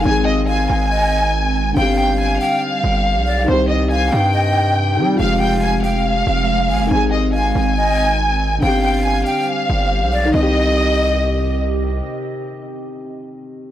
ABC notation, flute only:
X:1
M:4/4
L:1/8
Q:1/4=140
K:Cm
V:1 name="Flute"
z2 f2 e2 z2 | f3 g z3 d | z2 f2 e2 z2 | f3 g z3 a |
z2 f2 e2 z2 | f3 g z3 d | e6 z2 | z8 |]